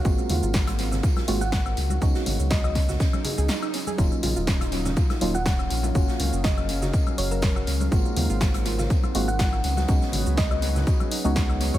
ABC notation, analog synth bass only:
X:1
M:4/4
L:1/16
Q:"Swing 16ths" 1/4=122
K:Dbmix
V:1 name="Analog synth bass" clef=bass
A,,, z E,, A,,,4- A,,, z2 A,,,4 D,,2 | D,, z A,,, D,,4- D,, z3 D,, z4 | E,,, z B,,, E,,,4- E,,, z2 E,,,4 B,,,2 | G,,, z D,, G,,,4- G,,, z2 G,,,4 D,,2 |
A,,, z E,, A,,,4- A,,, z2 A,,,4 D,,2 | D,, z A,,, D,,4- D,, z3 D,,4 G,, |]